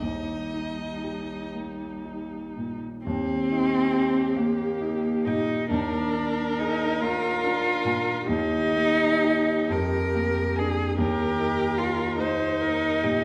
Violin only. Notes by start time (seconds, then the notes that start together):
0.03 D#5
3.94 G5
5.28 G5
6.60 G#5
7.86 G#5
9.23 G5
10.57 G#5
11.79 G5
13.04 G5